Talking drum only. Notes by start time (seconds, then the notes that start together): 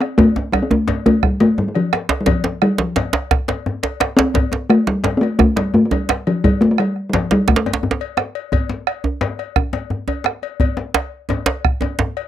0.01 C4
0.18 A3
0.52 G3
0.62 C4
0.71 A3
1.06 A3
1.23 G3
1.41 A3
1.58 G3
1.68 G3
1.76 F3
2.21 G3
2.28 F3
2.62 G3
2.79 F3
4.17 C4
4.70 A3
4.87 G3
5.17 A3 C4
5.39 A3
5.56 G3
5.74 A3
5.85 A3
5.92 G3
6.27 F3
6.44 G3
6.61 A3
6.71 A3
6.79 G3
7.09 G3
7.14 F3
7.32 G3
7.48 A3